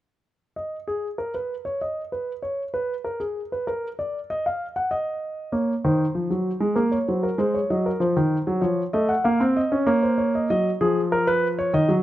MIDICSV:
0, 0, Header, 1, 2, 480
1, 0, Start_track
1, 0, Key_signature, -6, "minor"
1, 0, Tempo, 626305
1, 424, Time_signature, 4, 2, 24, 8
1, 3299, Tempo, 619195
1, 9285, End_track
2, 0, Start_track
2, 0, Title_t, "Grand piano"
2, 0, Program_c, 0, 0
2, 431, Note_on_c, 0, 75, 51
2, 579, Note_off_c, 0, 75, 0
2, 671, Note_on_c, 0, 68, 61
2, 818, Note_off_c, 0, 68, 0
2, 906, Note_on_c, 0, 70, 57
2, 1022, Note_off_c, 0, 70, 0
2, 1030, Note_on_c, 0, 71, 51
2, 1178, Note_off_c, 0, 71, 0
2, 1265, Note_on_c, 0, 73, 62
2, 1381, Note_off_c, 0, 73, 0
2, 1390, Note_on_c, 0, 75, 56
2, 1537, Note_off_c, 0, 75, 0
2, 1626, Note_on_c, 0, 71, 51
2, 1774, Note_off_c, 0, 71, 0
2, 1858, Note_on_c, 0, 73, 58
2, 2009, Note_off_c, 0, 73, 0
2, 2097, Note_on_c, 0, 71, 65
2, 2247, Note_off_c, 0, 71, 0
2, 2333, Note_on_c, 0, 70, 56
2, 2452, Note_on_c, 0, 68, 54
2, 2454, Note_off_c, 0, 70, 0
2, 2603, Note_off_c, 0, 68, 0
2, 2699, Note_on_c, 0, 71, 54
2, 2814, Note_on_c, 0, 70, 58
2, 2816, Note_off_c, 0, 71, 0
2, 2965, Note_off_c, 0, 70, 0
2, 3056, Note_on_c, 0, 74, 60
2, 3205, Note_off_c, 0, 74, 0
2, 3296, Note_on_c, 0, 75, 67
2, 3414, Note_off_c, 0, 75, 0
2, 3420, Note_on_c, 0, 77, 62
2, 3569, Note_off_c, 0, 77, 0
2, 3652, Note_on_c, 0, 78, 64
2, 3768, Note_on_c, 0, 75, 69
2, 3772, Note_off_c, 0, 78, 0
2, 4239, Note_off_c, 0, 75, 0
2, 4243, Note_on_c, 0, 73, 53
2, 4245, Note_on_c, 0, 58, 61
2, 4397, Note_off_c, 0, 73, 0
2, 4398, Note_off_c, 0, 58, 0
2, 4492, Note_on_c, 0, 72, 61
2, 4493, Note_on_c, 0, 51, 73
2, 4643, Note_off_c, 0, 51, 0
2, 4728, Note_on_c, 0, 53, 57
2, 4849, Note_on_c, 0, 54, 58
2, 4850, Note_off_c, 0, 53, 0
2, 5001, Note_off_c, 0, 54, 0
2, 5082, Note_on_c, 0, 56, 68
2, 5193, Note_off_c, 0, 72, 0
2, 5199, Note_on_c, 0, 70, 54
2, 5202, Note_on_c, 0, 58, 75
2, 5206, Note_off_c, 0, 56, 0
2, 5323, Note_on_c, 0, 73, 61
2, 5324, Note_off_c, 0, 70, 0
2, 5356, Note_off_c, 0, 58, 0
2, 5447, Note_off_c, 0, 73, 0
2, 5454, Note_on_c, 0, 54, 64
2, 5455, Note_on_c, 0, 72, 46
2, 5569, Note_on_c, 0, 70, 56
2, 5573, Note_off_c, 0, 72, 0
2, 5604, Note_off_c, 0, 54, 0
2, 5684, Note_on_c, 0, 56, 72
2, 5689, Note_off_c, 0, 70, 0
2, 5689, Note_on_c, 0, 72, 55
2, 5809, Note_off_c, 0, 72, 0
2, 5809, Note_on_c, 0, 73, 61
2, 5837, Note_off_c, 0, 56, 0
2, 5930, Note_off_c, 0, 73, 0
2, 5934, Note_on_c, 0, 54, 67
2, 5934, Note_on_c, 0, 75, 58
2, 6052, Note_off_c, 0, 75, 0
2, 6055, Note_on_c, 0, 70, 53
2, 6084, Note_off_c, 0, 54, 0
2, 6163, Note_on_c, 0, 53, 71
2, 6167, Note_on_c, 0, 72, 56
2, 6173, Note_off_c, 0, 70, 0
2, 6287, Note_off_c, 0, 53, 0
2, 6292, Note_on_c, 0, 51, 69
2, 6443, Note_off_c, 0, 51, 0
2, 6529, Note_on_c, 0, 54, 74
2, 6638, Note_off_c, 0, 72, 0
2, 6639, Note_on_c, 0, 73, 62
2, 6641, Note_on_c, 0, 53, 67
2, 6650, Note_off_c, 0, 54, 0
2, 6794, Note_off_c, 0, 73, 0
2, 6795, Note_off_c, 0, 53, 0
2, 6887, Note_on_c, 0, 75, 68
2, 6891, Note_on_c, 0, 57, 80
2, 7007, Note_on_c, 0, 78, 66
2, 7009, Note_off_c, 0, 75, 0
2, 7042, Note_off_c, 0, 57, 0
2, 7128, Note_on_c, 0, 77, 65
2, 7129, Note_off_c, 0, 78, 0
2, 7132, Note_on_c, 0, 58, 79
2, 7251, Note_off_c, 0, 58, 0
2, 7251, Note_on_c, 0, 60, 82
2, 7280, Note_off_c, 0, 77, 0
2, 7377, Note_on_c, 0, 75, 66
2, 7402, Note_off_c, 0, 60, 0
2, 7496, Note_on_c, 0, 61, 74
2, 7527, Note_off_c, 0, 75, 0
2, 7610, Note_on_c, 0, 58, 81
2, 7613, Note_on_c, 0, 73, 71
2, 7614, Note_off_c, 0, 61, 0
2, 7733, Note_off_c, 0, 73, 0
2, 7735, Note_on_c, 0, 72, 61
2, 7853, Note_on_c, 0, 73, 65
2, 7854, Note_off_c, 0, 72, 0
2, 7973, Note_off_c, 0, 73, 0
2, 7986, Note_on_c, 0, 75, 58
2, 8080, Note_off_c, 0, 58, 0
2, 8091, Note_off_c, 0, 75, 0
2, 8103, Note_on_c, 0, 54, 62
2, 8103, Note_on_c, 0, 75, 81
2, 8250, Note_off_c, 0, 54, 0
2, 8250, Note_off_c, 0, 75, 0
2, 8341, Note_on_c, 0, 53, 72
2, 8341, Note_on_c, 0, 68, 81
2, 8488, Note_off_c, 0, 68, 0
2, 8583, Note_on_c, 0, 70, 81
2, 8697, Note_off_c, 0, 70, 0
2, 8701, Note_on_c, 0, 71, 82
2, 8849, Note_off_c, 0, 71, 0
2, 8943, Note_on_c, 0, 73, 78
2, 9037, Note_off_c, 0, 53, 0
2, 9057, Note_off_c, 0, 73, 0
2, 9059, Note_on_c, 0, 51, 70
2, 9063, Note_on_c, 0, 75, 83
2, 9175, Note_off_c, 0, 51, 0
2, 9176, Note_on_c, 0, 54, 69
2, 9210, Note_off_c, 0, 75, 0
2, 9285, Note_off_c, 0, 54, 0
2, 9285, End_track
0, 0, End_of_file